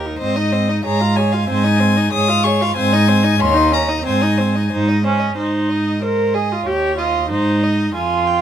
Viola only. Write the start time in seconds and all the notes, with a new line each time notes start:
0.06 D#4
0.22 C4
0.37 D#4
0.53 C4
0.69 D#4
0.85 G#4
1.01 F4
1.17 G#4
1.34 F4
1.48 C4
1.64 D#4
1.79 C4
1.97 D#4
2.12 G#4
2.28 F4
2.44 G#4
2.61 F4
2.78 C4
2.93 D#4
3.08 C4
3.23 D#4
3.39 C#4
3.54 D#4
3.71 C#4
3.89 D#4
4.04 C4
4.22 D#4
4.39 C4
4.56 D#4
4.72 D#4
5.05 C#4
5.38 D#4
6.03 A#4
6.34 G#4
6.52 F4
6.66 G4
6.98 F4
7.30 D#4
7.95 F4